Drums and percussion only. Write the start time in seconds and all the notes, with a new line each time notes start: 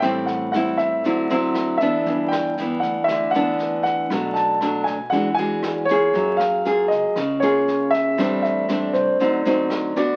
0.02 kick, cross-stick, snare
0.27 snare
0.53 cross-stick, snare
0.78 kick, snare
1.04 kick, snare
1.29 snare
1.54 cross-stick, snare
1.80 kick, snare
2.06 kick, snare
2.32 cross-stick, snare
2.57 snare
2.82 kick, snare
3.08 kick, cross-stick, snare
3.34 snare
3.59 snare
3.85 kick, snare
4.10 kick, cross-stick, snare
4.35 snare
4.61 cross-stick, snare
4.86 kick, snare
5.12 kick, snare
5.38 snare
5.63 cross-stick, snare
5.88 kick, snare
6.14 kick, snare
6.40 cross-stick, snare
6.65 snare
6.90 kick, snare
7.16 kick, cross-stick, snare
7.42 snare
7.68 snare
7.93 kick, snare
8.18 kick, cross-stick, snare
8.44 snare
8.69 cross-stick, snare
8.94 kick, snare
9.20 kick, snare
9.46 snare
9.70 cross-stick, snare
9.95 kick, snare